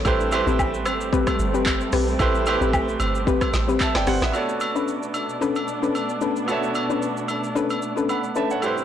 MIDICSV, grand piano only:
0, 0, Header, 1, 2, 480
1, 0, Start_track
1, 0, Tempo, 535714
1, 49, Time_signature, 4, 2, 24, 8
1, 7924, End_track
2, 0, Start_track
2, 0, Title_t, "Grand piano"
2, 0, Program_c, 0, 0
2, 0, Control_c, 0, 64, 127
2, 42, Note_on_c, 0, 57, 90
2, 47, Note_on_c, 0, 64, 81
2, 54, Note_on_c, 0, 67, 80
2, 60, Note_on_c, 0, 71, 79
2, 61, Control_c, 0, 64, 0
2, 66, Note_on_c, 0, 72, 99
2, 217, Control_c, 0, 64, 127
2, 242, Note_off_c, 0, 57, 0
2, 245, Note_off_c, 0, 64, 0
2, 248, Note_off_c, 0, 67, 0
2, 251, Note_off_c, 0, 71, 0
2, 254, Note_off_c, 0, 72, 0
2, 281, Note_on_c, 0, 57, 89
2, 287, Note_on_c, 0, 64, 81
2, 293, Note_on_c, 0, 67, 79
2, 300, Note_on_c, 0, 71, 80
2, 307, Note_on_c, 0, 72, 99
2, 1057, Note_off_c, 0, 57, 0
2, 1061, Note_off_c, 0, 64, 0
2, 1064, Note_off_c, 0, 67, 0
2, 1067, Note_off_c, 0, 71, 0
2, 1070, Note_off_c, 0, 72, 0
2, 1962, Note_on_c, 0, 57, 90
2, 1969, Note_on_c, 0, 64, 82
2, 1975, Note_on_c, 0, 67, 81
2, 1981, Note_on_c, 0, 71, 82
2, 1987, Note_on_c, 0, 72, 98
2, 2162, Note_off_c, 0, 57, 0
2, 2166, Note_off_c, 0, 64, 0
2, 2169, Note_off_c, 0, 67, 0
2, 2172, Note_off_c, 0, 71, 0
2, 2175, Note_off_c, 0, 72, 0
2, 2202, Note_on_c, 0, 57, 91
2, 2209, Note_on_c, 0, 64, 82
2, 2215, Note_on_c, 0, 67, 81
2, 2221, Note_on_c, 0, 71, 82
2, 2228, Note_on_c, 0, 72, 100
2, 2978, Note_off_c, 0, 57, 0
2, 2982, Note_off_c, 0, 64, 0
2, 2985, Note_off_c, 0, 67, 0
2, 2988, Note_off_c, 0, 71, 0
2, 2991, Note_off_c, 0, 72, 0
2, 3415, Note_on_c, 0, 81, 65
2, 3419, Note_on_c, 0, 76, 58
2, 3537, Note_off_c, 0, 81, 0
2, 3540, Note_off_c, 0, 76, 0
2, 3547, Note_on_c, 0, 79, 77
2, 3552, Note_on_c, 0, 74, 61
2, 3646, Note_off_c, 0, 79, 0
2, 3649, Note_off_c, 0, 74, 0
2, 3655, Note_on_c, 0, 78, 78
2, 3660, Note_on_c, 0, 72, 65
2, 3777, Note_off_c, 0, 78, 0
2, 3780, Note_off_c, 0, 72, 0
2, 3787, Note_on_c, 0, 76, 70
2, 3792, Note_on_c, 0, 71, 57
2, 3870, Note_on_c, 0, 59, 70
2, 3882, Note_on_c, 0, 66, 65
2, 3895, Note_on_c, 0, 69, 65
2, 3900, Control_c, 0, 64, 0
2, 3907, Note_on_c, 0, 73, 65
2, 3920, Note_on_c, 0, 74, 76
2, 4012, Note_off_c, 0, 76, 0
2, 4015, Note_off_c, 0, 71, 0
2, 4031, Control_c, 0, 64, 127
2, 5764, Note_off_c, 0, 59, 0
2, 5770, Note_off_c, 0, 66, 0
2, 5776, Note_off_c, 0, 69, 0
2, 5782, Note_off_c, 0, 73, 0
2, 5789, Note_off_c, 0, 74, 0
2, 5790, Note_on_c, 0, 59, 69
2, 5802, Note_on_c, 0, 66, 66
2, 5815, Note_on_c, 0, 69, 65
2, 5828, Note_on_c, 0, 73, 63
2, 5840, Note_on_c, 0, 76, 76
2, 7230, Note_off_c, 0, 73, 0
2, 7236, Note_off_c, 0, 76, 0
2, 7255, Note_on_c, 0, 83, 61
2, 7260, Note_on_c, 0, 78, 51
2, 7480, Note_off_c, 0, 83, 0
2, 7483, Note_off_c, 0, 78, 0
2, 7494, Note_on_c, 0, 81, 73
2, 7499, Note_on_c, 0, 76, 60
2, 7617, Note_off_c, 0, 81, 0
2, 7620, Note_off_c, 0, 76, 0
2, 7626, Note_on_c, 0, 78, 65
2, 7631, Note_on_c, 0, 73, 55
2, 7683, Note_off_c, 0, 59, 0
2, 7690, Note_off_c, 0, 66, 0
2, 7696, Note_off_c, 0, 69, 0
2, 7709, Note_on_c, 0, 57, 76
2, 7722, Note_on_c, 0, 64, 66
2, 7735, Note_on_c, 0, 67, 64
2, 7742, Control_c, 0, 64, 0
2, 7747, Note_on_c, 0, 71, 67
2, 7760, Note_on_c, 0, 72, 82
2, 7852, Note_off_c, 0, 78, 0
2, 7854, Note_off_c, 0, 73, 0
2, 7898, Control_c, 0, 64, 127
2, 7924, Note_off_c, 0, 57, 0
2, 7924, Note_off_c, 0, 64, 0
2, 7924, Note_off_c, 0, 67, 0
2, 7924, Note_off_c, 0, 71, 0
2, 7924, Note_off_c, 0, 72, 0
2, 7924, End_track
0, 0, End_of_file